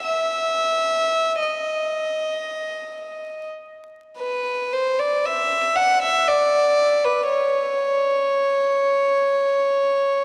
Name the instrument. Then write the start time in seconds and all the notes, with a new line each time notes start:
violin
0.04 E5
1.43 D#5
4.18 B4
4.73 C5
4.99 D5
5.26 E5
5.76 F#5
6.03 E5
6.28 D5
7.05 B4
7.29 C#5